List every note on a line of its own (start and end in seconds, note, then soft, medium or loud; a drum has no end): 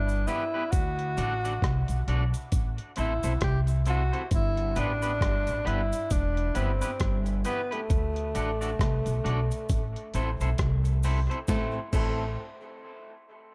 0.00 0.25 G1 loud
0.00 0.29 D4 loud
0.09 cabasa soft
0.27 0.42 B3 medium
0.27 0.73 E4 loud
0.27 0.43 E4 loud
0.27 0.43 G4 loud
0.27 0.43 B4 medium
0.27 cabasa medium
0.54 0.63 B3 medium
0.54 0.63 E4 medium
0.54 0.62 G4 medium
0.54 0.62 B4 medium
0.72 1.14 D2 loud
0.72 2.07 F#4 loud
0.72 kick loud
0.72 closed hi-hat medium
0.72 cabasa medium
0.99 closed hi-hat soft
1.17 1.59 A1 medium
1.17 1.32 D4 medium
1.17 1.32 F#4 medium
1.17 1.33 A4 medium
1.17 1.33 D5 medium
1.17 closed hi-hat medium
1.17 cabasa medium
1.45 1.53 D4 medium
1.45 1.53 F#4 medium
1.45 1.53 A4 medium
1.45 1.52 D5 medium
1.45 closed hi-hat soft
1.45 cabasa medium
1.62 1.87 C2 medium
1.62 kick loud
1.62 cross-stick loud
1.62 closed hi-hat medium
1.88 2.06 B1 medium
1.88 closed hi-hat medium
1.88 cabasa medium
2.08 2.32 B1 medium
2.08 2.22 D4 medium
2.08 2.23 F#4 medium
2.08 2.23 A4 medium
2.08 2.23 D5 loud
2.08 closed hi-hat medium
2.34 closed hi-hat medium
2.34 cabasa medium
2.52 2.77 A1 medium
2.52 kick loud
2.52 closed hi-hat medium
2.52 cabasa medium
2.78 closed hi-hat medium
2.96 3.22 A1 medium
2.96 3.11 C4 medium
2.96 3.12 E4 medium
2.96 3.40 E4 medium
2.96 3.12 A4 medium
2.96 3.12 C5 medium
2.96 closed hi-hat medium
2.96 cabasa medium
3.23 3.41 B1 medium
3.23 3.32 C4 medium
3.23 3.32 E4 medium
3.23 3.32 A4 medium
3.23 3.32 C5 medium
3.23 closed hi-hat medium
3.23 cabasa medium
3.41 4.09 C2 loud
3.41 3.60 G4 loud
3.41 kick loud
3.41 cross-stick loud
3.41 closed hi-hat loud
3.67 closed hi-hat soft
3.67 cabasa medium
3.86 4.01 C4 medium
3.86 4.01 E4 medium
3.86 4.01 A4 medium
3.86 4.02 C5 medium
3.86 closed hi-hat medium
3.86 cabasa medium
3.90 4.30 F#4 loud
4.13 4.21 C4 medium
4.13 4.21 E4 medium
4.13 4.21 A4 medium
4.13 4.21 C5 medium
4.13 closed hi-hat soft
4.31 4.73 G1 loud
4.31 kick loud
4.31 closed hi-hat medium
4.31 cabasa medium
4.35 4.81 E4 loud
4.57 closed hi-hat soft
4.76 5.18 A1 medium
4.76 4.91 B3 medium
4.76 4.91 D4 medium
4.76 5.69 D4 loud
4.76 4.91 G4 medium
4.76 4.91 B4 medium
4.76 closed hi-hat medium
4.76 cabasa medium
5.02 5.11 B3 medium
5.02 5.11 D4 medium
5.02 5.11 G4 medium
5.02 5.10 B4 medium
5.02 closed hi-hat soft
5.02 cabasa medium
5.21 5.46 G1 medium
5.21 kick loud
5.21 cross-stick loud
5.21 closed hi-hat loud
5.47 5.65 A1 medium
5.47 closed hi-hat medium
5.47 cabasa soft
5.65 5.90 G1 medium
5.65 5.80 B3 loud
5.65 5.80 D4 medium
5.65 6.13 E4 loud
5.65 5.80 G4 loud
5.65 5.80 B4 loud
5.65 closed hi-hat medium
5.93 closed hi-hat medium
5.93 cabasa medium
6.10 6.52 E1 medium
6.10 6.58 D4 loud
6.10 kick loud
6.10 closed hi-hat medium
6.10 cabasa medium
6.37 closed hi-hat soft
6.55 6.80 G1 medium
6.55 6.70 B3 medium
6.55 7.22 C4 medium
6.55 6.70 E4 medium
6.55 6.70 G4 medium
6.55 6.70 B4 medium
6.55 closed hi-hat medium
6.55 cabasa medium
6.81 6.90 B3 soft
6.81 6.90 E4 soft
6.81 6.90 G4 medium
6.81 6.90 B4 medium
6.81 closed hi-hat medium
6.81 cabasa medium
7.00 7.42 G1 loud
7.00 kick loud
7.00 cross-stick loud
7.00 closed hi-hat loud
7.26 closed hi-hat soft
7.26 cabasa soft
7.44 7.59 B3 medium
7.44 7.74 B3 medium
7.44 7.60 E4 medium
7.44 7.60 G4 medium
7.44 7.60 B4 loud
7.44 closed hi-hat medium
7.44 cabasa medium
7.71 11.04 A3 medium
7.71 7.80 B3 soft
7.71 7.79 E4 medium
7.71 7.79 G4 medium
7.71 7.79 B4 medium
7.71 closed hi-hat medium
7.90 8.31 D2 loud
7.90 kick loud
7.90 closed hi-hat medium
7.90 cabasa medium
8.16 closed hi-hat medium
8.35 8.76 A1 medium
8.35 8.49 D4 medium
8.35 8.50 F#4 medium
8.35 8.50 A4 medium
8.35 8.50 D5 medium
8.35 closed hi-hat medium
8.35 cabasa medium
8.61 8.70 D4 medium
8.61 8.69 F#4 medium
8.61 8.69 A4 medium
8.61 8.69 D5 medium
8.61 closed hi-hat soft
8.61 cabasa medium
8.79 9.04 C2 medium
8.79 kick loud
8.79 cross-stick loud
8.79 closed hi-hat loud
9.06 9.23 B1 medium
9.06 closed hi-hat soft
9.06 cabasa medium
9.24 9.49 B1 medium
9.24 9.39 D4 medium
9.24 9.39 F#4 medium
9.24 9.39 A4 medium
9.24 9.39 D5 medium
9.24 closed hi-hat medium
9.51 closed hi-hat medium
9.51 cabasa medium
9.69 9.94 A1 medium
9.69 kick loud
9.69 closed hi-hat medium
9.69 cabasa medium
9.96 closed hi-hat medium
10.14 10.38 A1 medium
10.14 10.29 C4 medium
10.14 10.29 E4 medium
10.14 10.29 A4 medium
10.14 10.29 C5 medium
10.14 closed hi-hat medium
10.14 cabasa medium
10.40 10.57 B1 medium
10.40 10.49 C4 soft
10.40 10.49 E4 medium
10.40 10.49 A4 medium
10.40 10.49 C5 medium
10.40 closed hi-hat soft
10.40 cabasa medium
10.58 11.26 C2 loud
10.58 kick loud
10.58 cross-stick loud
10.58 closed hi-hat loud
10.85 closed hi-hat soft
10.85 cabasa soft
11.03 11.18 C4 medium
11.03 11.19 E4 medium
11.03 11.19 A4 medium
11.03 11.19 C5 medium
11.03 open hi-hat medium
11.03 cabasa medium
11.30 11.39 C4 soft
11.30 11.38 E4 soft
11.30 11.38 A4 medium
11.30 11.38 C5 medium
11.30 closed hi-hat soft
11.48 11.76 A1 medium
11.48 11.76 A3 medium
11.48 11.78 C4 medium
11.48 11.79 E4 medium
11.48 11.79 A4 medium
11.48 11.79 C5 medium
11.48 kick loud
11.48 snare medium
11.48 cabasa medium
11.93 12.35 A1 loud
11.93 12.34 A3 medium
11.93 12.23 C4 medium
11.93 12.23 E4 medium
11.93 12.24 A4 loud
11.93 12.24 C5 medium
11.93 kick loud
11.93 crash medium
11.93 cabasa medium